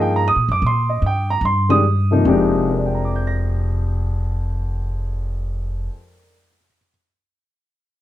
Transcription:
0.00 0.33 G2 medium
0.00 0.22 F3 medium
0.00 0.22 A#3 medium
0.00 0.22 D#4 medium
0.00 0.23 G#4 medium
0.00 0.12 G5 medium
0.16 0.26 A#5 medium
0.28 0.51 D#6 medium
0.36 0.48 A#2 medium
0.49 0.61 F#2 medium
0.49 0.63 D6 medium
0.62 0.99 A#2 medium
0.67 0.90 C6 medium
0.89 1.02 D#5 medium
1.02 1.39 G2 medium
1.06 1.30 G5 medium
1.30 1.43 A#5 medium
1.41 2.22 G2 medium
1.45 1.70 C6 medium
1.69 1.82 D#3 medium
1.69 1.82 G#3 soft
1.69 1.83 D4 medium
1.69 1.83 G4 medium
1.69 1.78 D#6 medium
2.11 2.24 C3 medium
2.11 2.67 F3 medium
2.11 2.67 A#3 medium
2.11 2.67 D#4 medium
2.25 5.87 F1 medium
2.25 5.90 F2 medium
2.25 5.91 C3 medium
2.25 5.92 G#3 medium
2.25 5.93 D4 medium
2.25 5.93 G4 medium
2.70 6.32 A#4 soft
2.77 6.39 D5 soft
2.86 6.47 G5 soft
2.95 6.56 A#5 soft
3.05 6.66 D6 soft
3.16 6.77 G6 soft
3.27 6.89 A#6 soft

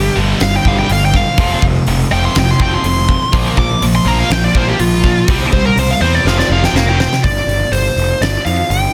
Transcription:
0.00 0.14 G2 medium
0.00 0.14 D3 medium
0.00 0.15 G4 medium
0.15 0.33 G1 loud
0.15 0.39 G2 medium
0.15 0.39 D3 medium
0.15 0.40 G3 loud
0.40 0.57 G1 medium
0.40 0.63 G2 medium
0.40 0.63 D3 medium
0.40 0.54 F5 medium
0.40 snare loud
0.40 open hi-hat medium
0.56 0.68 G5 loud
0.65 0.81 G1 medium
0.65 0.88 G2 loud
0.65 0.89 D3 loud
0.65 0.89 G3 loud
0.65 0.79 F5 medium
0.65 kick medium
0.79 0.90 G5 medium
0.89 1.21 G1 medium
0.89 1.12 G2 medium
0.89 1.12 D3 medium
0.89 1.03 F5 medium
0.89 open hi-hat medium
1.05 1.16 G5 loud
1.14 1.36 G2 medium
1.14 1.36 D3 medium
1.14 1.63 F5 medium
1.14 kick medium
1.14 snare soft
1.38 1.54 F1 medium
1.38 1.61 F2 medium
1.38 1.61 C3 medium
1.38 1.62 F3 loud
1.38 kick loud
1.38 open hi-hat medium
1.62 1.78 F1 medium
1.62 1.85 F2 medium
1.62 1.85 C3 medium
1.62 kick medium
1.87 2.03 F1 loud
1.87 2.09 F2 medium
1.87 2.10 C3 medium
1.87 open hi-hat medium
2.11 2.27 F1 medium
2.11 2.34 F2 medium
2.11 2.35 C3 medium
2.11 2.35 F3 medium
2.11 2.24 G5 loud
2.25 2.36 C6 loud
2.35 2.52 F1 loud
2.35 2.57 F2 medium
2.35 2.58 C3 medium
2.35 snare loud
2.35 open hi-hat medium
2.39 2.49 G5 medium
2.51 2.61 C6 medium
2.60 2.76 F1 medium
2.60 2.83 F2 loud
2.60 2.84 C3 loud
2.60 2.84 F3 loud
2.60 2.73 G5 loud
2.60 kick medium
2.74 2.85 C6 medium
2.83 3.16 F1 medium
2.83 3.07 F2 medium
2.83 3.07 C3 medium
2.83 3.33 C6 loud
2.83 open hi-hat medium
3.09 3.31 F2 medium
3.09 3.31 C3 medium
3.09 kick medium
3.32 3.49 A#1 medium
3.32 3.56 A#2 loud
3.32 3.56 F3 loud
3.32 3.57 A#3 loud
3.32 kick loud
3.32 open hi-hat medium
3.57 3.73 A#1 medium
3.57 3.79 A#2 medium
3.57 3.80 F3 medium
3.57 3.82 D6 loud
3.57 kick medium
3.81 3.98 A#1 loud
3.81 4.04 A#2 medium
3.81 4.04 F3 medium
3.81 open hi-hat medium
3.96 4.08 C6 medium
4.05 4.21 A#1 loud
4.05 4.29 A#2 medium
4.05 4.30 F3 loud
4.05 4.30 A#3 loud
4.05 4.19 A#5 medium
4.19 4.32 F5 loud
4.30 4.46 A#1 loud
4.30 4.53 A#2 medium
4.30 4.53 F3 medium
4.30 4.43 G5 medium
4.30 snare loud
4.30 open hi-hat medium
4.44 4.56 D5 medium
4.54 4.71 A#1 medium
4.54 4.78 A#2 medium
4.54 4.79 F3 loud
4.54 4.79 A#3 loud
4.54 4.68 C5 medium
4.54 kick medium
4.68 4.80 G4 loud
4.79 5.11 A#1 medium
4.79 5.02 A#2 medium
4.79 5.02 F3 medium
4.79 5.27 F4 loud
4.79 open hi-hat medium
5.04 5.27 A#2 medium
5.04 5.27 F3 medium
5.04 kick medium
5.04 snare soft
5.28 5.44 C2 loud
5.28 5.52 C3 medium
5.28 5.52 G3 medium
5.28 5.52 C4 loud
5.28 kick loud
5.28 open hi-hat medium
5.53 5.69 C2 medium
5.53 5.76 C3 medium
5.53 5.76 G3 medium
5.53 5.65 C5 loud
5.53 kick medium
5.66 5.79 A#4 medium
5.77 5.93 C2 medium
5.77 6.00 C3 medium
5.77 6.00 G3 loud
5.77 5.90 C5 medium
5.77 open hi-hat medium
5.91 6.01 F5 loud
6.01 6.17 E2 loud
6.01 6.25 C3 medium
6.01 6.25 G3 medium
6.01 6.26 C4 medium
6.01 6.15 C5 medium
6.15 6.27 D5 medium
6.25 6.41 F1 loud
6.25 6.49 F2 medium
6.25 6.49 C3 medium
6.25 6.50 F3 loud
6.25 6.38 F5 medium
6.25 snare medium
6.39 6.52 D5 loud
6.39 snare medium
6.49 6.66 F1 medium
6.49 6.74 F2 loud
6.49 6.74 C3 loud
6.49 6.74 F3 loud
6.49 6.63 F5 medium
6.64 6.76 G5 loud
6.64 snare medium
6.73 7.06 F1 medium
6.73 6.97 F2 medium
6.73 6.97 C3 loud
6.73 6.98 A#4 medium
6.73 6.88 F5 loud
6.73 snare loud
6.89 7.00 G5 loud
7.00 7.22 F2 medium
7.00 7.22 C3 medium
7.00 7.07 C5 medium
7.00 7.24 G5 loud
7.00 snare medium
7.13 snare medium
7.23 7.40 G1 medium
7.23 7.74 D5 medium
7.23 kick loud
7.23 open hi-hat medium
7.47 7.63 G1 medium
7.47 open hi-hat medium
7.72 7.88 G1 medium
7.72 8.23 C5 medium
7.72 open hi-hat medium
7.96 8.12 F1 medium
7.96 open hi-hat soft
8.21 8.37 G1 medium
8.21 8.45 D5 medium
8.21 snare loud
8.21 open hi-hat medium
8.46 8.61 F2 medium
8.46 8.69 F5 medium
8.46 open hi-hat medium
8.70 8.86 G1 medium
8.70 8.93 G5 medium
8.70 open hi-hat medium

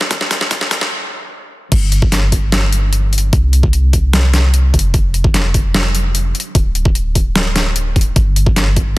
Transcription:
0.01 snare medium
0.11 kick loud
0.11 snare loud
0.11 closed hi-hat medium
0.21 snare medium
0.31 snare loud
0.31 closed hi-hat medium
0.41 snare medium
0.51 kick loud
0.51 snare loud
0.51 closed hi-hat medium
0.61 snare medium
0.71 snare loud
0.71 closed hi-hat medium
0.81 snare medium
1.72 3.31 G1 medium
1.72 kick loud
1.72 closed hi-hat medium
1.72 crash loud
1.92 closed hi-hat medium
2.02 kick loud
2.12 snare medium
2.12 closed hi-hat medium
2.32 kick medium
2.32 closed hi-hat medium
2.52 snare loud
2.52 closed hi-hat medium
2.73 closed hi-hat medium
2.93 closed hi-hat medium
3.13 closed hi-hat soft
3.18 closed hi-hat medium
3.33 4.72 C2 medium
3.33 kick loud
3.33 closed hi-hat medium
3.53 closed hi-hat medium
3.63 kick loud
3.73 closed hi-hat medium
3.93 kick medium
3.93 closed hi-hat medium
4.13 snare loud
4.13 closed hi-hat medium
4.34 snare medium
4.34 closed hi-hat medium
4.54 closed hi-hat medium
4.74 6.33 F1 medium
4.74 kick medium
4.74 closed hi-hat soft
4.79 closed hi-hat medium
4.94 kick loud
4.94 closed hi-hat medium
5.14 closed hi-hat medium
5.24 kick loud
5.34 snare medium
5.34 closed hi-hat medium
5.54 kick medium
5.54 closed hi-hat medium
5.74 snare loud
5.74 closed hi-hat medium
5.95 closed hi-hat medium
6.15 closed hi-hat medium
6.35 closed hi-hat soft
6.40 closed hi-hat medium
6.55 8.14 D1 medium
6.55 kick loud
6.55 closed hi-hat medium
6.75 closed hi-hat medium
6.85 kick loud
6.95 closed hi-hat medium
7.15 kick medium
7.15 closed hi-hat medium
7.36 snare loud
7.36 closed hi-hat medium
7.56 snare medium
7.56 closed hi-hat medium
7.76 closed hi-hat medium
7.96 kick medium
7.96 closed hi-hat soft
8.01 closed hi-hat medium
8.16 8.98 G1 medium
8.16 kick loud
8.16 closed hi-hat medium
8.36 closed hi-hat medium
8.46 kick loud
8.56 snare medium
8.56 closed hi-hat medium
8.77 kick medium
8.77 closed hi-hat medium

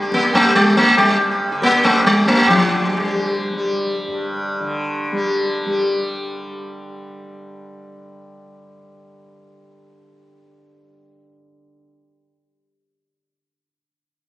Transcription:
0.00 0.98 G2 medium
0.00 1.51 D3 medium
0.00 0.46 G3 medium
0.00 0.22 G4 soft
0.12 0.35 A#3 loud
0.12 tabla ke medium
0.23 0.43 G4 soft
0.33 0.55 A3 loud
0.33 tabla tin medium
0.33 tabla ge medium
0.45 2.05 G3 medium
0.45 0.65 G4 soft
0.55 0.77 G3 medium
0.55 tabla na medium
0.66 0.86 G4 soft
0.76 0.97 A3 loud
0.76 tabla ke medium
0.87 1.07 G4 soft
0.97 4.07 G2 medium
0.97 1.18 G3 medium
0.97 tabla na loud
0.97 tabla ge loud
1.10 1.19 G4 soft
1.21 1.30 G4 soft
1.31 1.51 G4 soft
1.52 2.48 D3 medium
1.52 1.72 G4 soft
1.62 1.85 A#3 loud
1.62 tabla ke medium
1.73 1.93 G4 soft
1.83 2.06 A3 medium
1.83 tabla tin medium
1.83 tabla ge medium
1.94 2.14 G4 soft
2.05 3.01 G3 medium
2.05 2.27 G3 medium
2.05 tabla na medium
2.16 2.36 G4 soft
2.26 2.49 A3 loud
2.26 tabla ke medium
2.37 2.57 G4 soft
2.47 4.60 D3 medium
2.47 2.78 E3 medium
2.47 tabla na loud
2.47 tabla ge loud
2.78 2.90 F3 medium
2.90 3.03 F#3 medium
3.01 3.53 G3 medium
3.01 4.16 G3 medium
3.53 5.12 G3 medium
4.07 11.22 G2 medium
4.60 11.75 D3 medium
5.12 5.66 G3 medium
5.66 12.20 G3 medium

